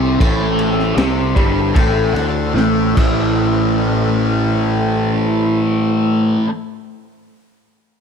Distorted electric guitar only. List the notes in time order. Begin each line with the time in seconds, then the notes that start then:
Already playing: C3 C4
0.20 A2 A3
0.96 C3 C4
1.35 G2 G3
1.73 A2 A3
2.14 D3 D4
2.54 A2 A3
2.96 A2 E3
3.00 A3